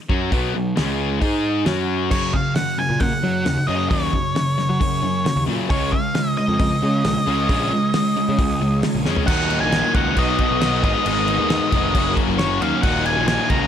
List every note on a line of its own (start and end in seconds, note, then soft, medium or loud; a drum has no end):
0.09 0.30 F#2 medium
0.09 0.32 F#3 medium
0.09 0.32 C#4 medium
0.09 0.32 F#4 medium
0.09 kick loud
0.32 0.53 B1 medium
0.32 0.54 B2 medium
0.32 0.54 F#3 loud
0.32 0.55 B3 medium
0.32 kick medium
0.32 open hi-hat soft
0.55 0.76 B1 medium
0.55 0.73 B2 medium
0.55 0.73 F#3 medium
0.77 1.19 C#2 medium
0.77 1.21 C#3 medium
0.77 1.21 G#3 loud
0.77 1.22 C#4 medium
0.77 snare loud
0.77 open hi-hat medium
1.21 1.63 G#2 medium
1.21 1.66 G#3 medium
1.21 1.67 D#4 medium
1.21 1.67 G#4 medium
1.21 kick medium
1.21 open hi-hat soft
1.66 2.08 F#2 medium
1.66 2.11 F#3 medium
1.66 2.11 C#4 medium
1.66 2.11 F#4 medium
1.66 snare loud
1.66 open hi-hat soft
2.11 2.32 F#2 medium
2.11 2.33 F#2 medium
2.11 2.33 C#3 medium
2.11 2.33 F#3 medium
2.11 2.35 C#5 medium
2.11 kick loud
2.11 crash loud
2.33 2.54 F#2 medium
2.33 2.54 C#3 medium
2.33 2.55 F5 medium
2.33 kick medium
2.56 2.77 F#2 medium
2.56 2.77 C#3 medium
2.56 2.79 F#5 medium
2.56 snare loud
2.56 open hi-hat medium
2.79 3.00 F#2 medium
2.79 3.00 C#3 medium
2.79 3.02 G#5 medium
2.90 3.00 A#2 medium
3.00 3.22 F#2 medium
3.00 3.11 A#2 medium
3.00 3.22 C#3 medium
3.00 3.70 F#5 medium
3.00 kick loud
3.00 open hi-hat soft
3.23 3.45 F#2 medium
3.23 3.45 C#3 medium
3.23 3.44 F#3 medium
3.45 3.56 D#2 medium
3.45 3.67 F#2 medium
3.45 3.67 C#3 medium
3.45 snare loud
3.45 open hi-hat medium
3.67 3.89 F#2 medium
3.67 3.90 F#2 medium
3.67 3.90 C#3 medium
3.67 3.90 F#3 medium
3.67 3.90 D#5 medium
3.90 4.12 D#2 loud
3.90 4.13 F#2 loud
3.90 4.13 C#3 medium
3.90 4.13 F#3 medium
3.90 5.43 C#5 medium
3.90 kick loud
3.90 open hi-hat medium
4.13 4.34 F#2 medium
4.13 4.34 C#3 medium
4.13 kick medium
4.36 4.57 F#2 medium
4.36 4.57 C#3 medium
4.36 snare loud
4.36 open hi-hat medium
4.59 4.79 F#2 medium
4.59 4.79 C#3 medium
4.59 snare soft
4.69 4.80 F#3 medium
4.81 5.01 F#2 medium
4.81 5.02 C#3 medium
4.81 kick loud
4.81 open hi-hat medium
5.03 5.24 F#2 medium
5.03 5.24 C#3 medium
5.26 5.46 F#2 medium
5.26 5.46 C#3 medium
5.26 snare loud
5.26 open hi-hat soft
5.36 5.47 D#2 medium
5.48 5.69 F#2 medium
5.48 5.59 A#2 loud
5.48 5.70 C#3 medium
5.48 5.70 F#3 medium
5.69 5.91 C#2 medium
5.69 5.92 C#3 medium
5.69 5.92 G#3 medium
5.69 5.93 C#4 loud
5.69 9.24 F4 medium
5.69 9.24 G#4 medium
5.69 9.24 C#5 medium
5.69 5.93 C#5 medium
5.69 9.24 D#5 medium
5.69 kick loud
5.69 open hi-hat medium
5.92 6.14 C#3 medium
5.92 6.14 G#3 medium
5.92 6.38 F5 loud
5.92 kick medium
6.15 6.36 C#3 medium
6.15 6.36 G#3 medium
6.15 snare loud
6.15 open hi-hat medium
6.37 6.58 C#3 medium
6.37 6.58 G#3 medium
6.37 8.79 D#5 medium
6.48 6.59 F2 medium
6.59 6.70 F2 medium
6.59 6.80 C#3 medium
6.59 6.80 G#3 medium
6.59 kick loud
6.59 open hi-hat medium
6.83 7.03 C#3 medium
6.83 7.03 G#3 medium
7.05 7.15 A#1 medium
7.05 7.25 C#3 medium
7.05 7.25 G#3 medium
7.05 snare loud
7.05 open hi-hat medium
7.27 7.48 C#2 medium
7.27 7.48 C#3 medium
7.27 7.48 G#3 medium
7.27 7.48 C#4 medium
7.49 7.70 A#1 loud
7.49 7.70 C#3 medium
7.49 7.70 G#3 loud
7.49 7.71 C#4 loud
7.49 kick loud
7.49 open hi-hat medium
7.72 7.92 C#3 medium
7.72 7.92 G#3 medium
7.94 8.14 C#3 medium
7.94 8.15 G#3 medium
7.94 snare loud
7.94 open hi-hat medium
8.16 8.37 C#3 medium
8.16 8.37 G#3 medium
8.29 8.38 C#3 medium
8.39 8.59 C#2 medium
8.39 8.59 C#3 medium
8.39 8.60 G#3 medium
8.39 kick loud
8.39 open hi-hat medium
8.61 8.82 C#2 medium
8.61 8.82 C#3 medium
8.61 8.82 G#3 medium
8.83 9.04 C#3 medium
8.83 9.04 G#3 medium
8.83 snare loud
8.83 open hi-hat medium
8.95 9.05 A#1 loud
9.06 9.16 F2 medium
9.06 9.27 C#3 medium
9.06 9.27 G#3 medium
9.06 9.28 C#4 loud
9.06 snare medium
9.16 floor tom medium
9.27 9.59 D#2 loud
9.27 9.73 D#2 loud
9.27 9.73 A#2 loud
9.27 9.51 D#3 loud
9.27 9.50 F#3 loud
9.27 9.50 A#3 loud
9.27 10.16 D#4 medium
9.27 9.49 D#4 loud
9.27 10.16 F#4 medium
9.27 10.17 A#4 medium
9.27 10.16 D#5 medium
9.27 9.60 F#5 loud
9.27 kick loud
9.27 crash loud
9.27 crash medium
9.50 9.71 D#3 medium
9.50 9.72 F#3 medium
9.50 9.73 A#3 medium
9.50 9.73 D#4 medium
9.50 crash medium
9.61 9.82 A#1 medium
9.61 9.95 G#5 loud
9.72 9.95 D#3 medium
9.72 9.95 F#3 medium
9.72 9.94 A#3 medium
9.72 9.93 D#4 medium
9.72 snare loud
9.72 crash medium
9.94 10.15 C#2 medium
9.94 10.17 D#3 medium
9.94 10.16 F#3 medium
9.94 10.16 A#3 medium
9.94 10.16 D#4 medium
9.94 10.18 F#5 loud
9.94 kick medium
9.94 crash medium
10.16 10.37 B1 medium
10.16 10.82 B2 medium
10.16 10.60 F#3 medium
10.16 10.60 B3 loud
10.16 10.82 D#4 medium
10.16 10.61 D#4 loud
10.16 10.83 F#4 medium
10.16 10.61 F#4 loud
10.16 10.82 B4 medium
10.16 10.82 D#5 medium
10.16 10.84 D#5 medium
10.16 kick medium
10.16 crash medium
10.38 10.61 B3 medium
10.38 10.63 D#4 medium
10.38 10.64 F#4 medium
10.38 kick medium
10.38 crash medium
10.51 10.82 B1 loud
10.61 10.82 F#3 medium
10.61 10.82 B3 medium
10.61 10.82 D#4 medium
10.61 10.82 F#4 medium
10.61 snare loud
10.61 crash medium
10.83 10.94 G#1 loud
10.83 11.04 G#2 medium
10.83 11.04 D#3 medium
10.83 11.05 G#3 medium
10.83 11.06 B3 loud
10.83 11.06 D#4 medium
10.83 11.94 D#4 medium
10.83 11.94 G#4 medium
10.83 11.93 B4 medium
10.83 11.94 D#5 medium
10.83 12.14 D#5 medium
10.83 kick loud
10.83 crash medium
11.05 11.37 G#1 loud
11.05 11.50 G#2 loud
11.05 11.49 D#3 loud
11.05 11.29 G#3 loud
11.05 11.28 B3 loud
11.05 11.27 D#4 loud
11.05 crash medium
11.28 11.50 G#3 medium
11.28 11.50 B3 medium
11.28 11.51 D#4 medium
11.28 crash medium
11.39 11.60 D#2 medium
11.50 11.94 D#3 medium
11.50 11.73 G#3 medium
11.50 11.73 B3 loud
11.50 11.71 D#4 medium
11.50 snare loud
11.50 crash medium
11.72 11.93 F1 medium
11.72 11.95 G#3 medium
11.72 11.94 B3 medium
11.72 11.94 D#4 medium
11.72 kick medium
11.72 crash medium
11.94 12.15 F#1 loud
11.94 12.61 F#2 loud
11.94 12.62 C#3 loud
11.94 12.38 F#3 loud
11.94 12.39 A#3 loud
11.94 12.82 C#4 medium
11.94 12.40 C#4 loud
11.94 12.83 F#4 medium
11.94 12.40 F#4 loud
11.94 12.83 A#4 medium
11.94 12.82 C#5 medium
11.94 kick medium
11.94 crash medium
12.15 12.37 F#3 medium
12.15 12.38 A#3 medium
12.15 12.39 C#4 medium
12.15 12.40 F#4 medium
12.15 kick medium
12.15 crash medium
12.28 12.59 F#1 loud
12.38 12.62 F#3 medium
12.38 12.61 A#3 medium
12.38 12.61 C#4 medium
12.38 12.60 F#4 medium
12.38 12.62 C#5 medium
12.38 snare loud
12.38 crash medium
12.61 12.72 D#2 medium
12.61 12.83 F#3 medium
12.61 12.83 A#3 medium
12.61 12.83 C#4 medium
12.61 12.82 F#4 medium
12.61 12.82 F5 medium
12.61 crash medium
12.83 13.15 D#1 loud
12.83 13.28 D#2 loud
12.83 13.28 A#2 loud
12.83 13.06 D#3 loud
12.83 13.06 F#3 loud
12.83 13.05 A#3 loud
12.83 13.67 D#4 medium
12.83 13.04 D#4 loud
12.83 13.67 F#4 medium
12.83 13.67 A#4 medium
12.83 13.67 D#5 medium
12.83 13.06 F#5 loud
12.83 kick loud
12.83 crash medium
13.05 13.26 D#3 medium
13.05 13.27 F#3 medium
13.05 13.27 A#3 medium
13.05 13.28 D#4 medium
13.05 13.27 G#5 loud
13.05 crash medium
13.17 13.38 A#1 medium
13.27 13.50 D#3 medium
13.27 13.50 F#3 medium
13.27 13.49 A#3 medium
13.27 13.49 D#4 medium
13.27 13.51 G#5 medium
13.27 snare loud
13.27 crash medium
13.50 13.67 C#2 loud
13.50 13.67 D#3 medium
13.50 13.67 F#3 medium
13.50 13.67 A#3 medium
13.50 13.67 D#4 medium
13.50 13.67 A#5 loud
13.50 kick medium
13.50 crash medium